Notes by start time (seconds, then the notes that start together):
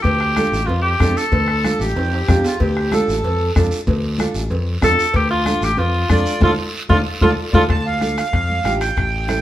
0.02 D2 G4, bombo low, cowbell, high conga, long guiro
0.21 bombo rim
0.36 D4 F4 A4, bombo rim, high conga, short guiro
0.52 A1, short guiro
0.66 F2 F4, cowbell, high conga, low conga
0.70 long guiro
0.82 G4
1.00 F2 D4 F4 A4, bombo low, bombo rim, high conga, low timbale, short guiro
1.17 A4, short guiro
1.32 D2, bombo low, cowbell, high conga, low conga, long guiro
1.48 A4, bombo rim
1.64 D4 F4 A4, bombo rim, high conga, short guiro
1.79 A1 G4, short guiro
1.95 F2, cowbell, high conga, low conga, high timbale, long guiro
2.13 high timbale
2.28 F2 D4 F4 G4, bombo low, bombo rim, high conga, low timbale, short guiro
2.44 F4, low timbale, short guiro
2.60 D2 G4, bombo low, cowbell, high conga, long guiro
2.77 bombo rim
2.92 D4 F4 A4, bombo rim, high conga, short guiro
3.08 A1, short guiro
3.24 F2, cowbell, high conga, low conga, long guiro
3.56 F2 D4 F4 A4, bombo low, bombo rim, high conga, short guiro
3.71 short guiro
3.87 D2, bombo low, cowbell, high conga, low conga, long guiro
4.18 D4 F4 A4, bombo rim, high conga, short guiro
4.34 A1, short guiro
4.50 F2, cowbell, high conga, low conga, long guiro
4.82 F2 D4 F4 A4, bombo low, bombo rim, high conga, low conga, low timbale, short guiro
4.99 short guiro
5.14 D2 G4, bombo low, cowbell, high conga, long guiro
5.31 F4
5.46 D4 F4 A4, bombo rim, high conga, short guiro
5.61 A1 G4, short guiro
5.77 F2 F4, cowbell, high conga, low conga, long guiro
6.09 F2 D4 F4 A4 D5, bombo low, bombo rim, high conga, short guiro
6.26 short guiro
6.41 D2 D4 F4 A4 D5, bombo low, high conga, high timbale, long guiro
6.89 D2 D4 F4 A4 D5, bombo low, high conga, high timbale, long guiro
7.21 D2 D4 F4 A4 D5, bombo low, high conga, high timbale, long guiro
7.52 D2 D4 F4 A4 D5, bombo low, high conga, high timbale, long guiro
7.69 D2 A5, bombo low, bombo rim, high timbale, long guiro
7.86 F5
8.01 D4 F4 A4, bombo rim, high conga, high timbale, short guiro
8.18 F5, bombo rim, high timbale, short guiro
8.33 F2, bombo low, bombo rim, high timbale, long guiro
8.50 high conga
8.64 A1 D4 F4 G4, bombo rim, high conga, high timbale, short guiro
8.80 G5, bombo rim, high timbale, short guiro
8.96 A1, bombo low, bombo rim, high timbale, long guiro
9.28 C#4 E4 A4, bombo rim, high conga, high timbale, short guiro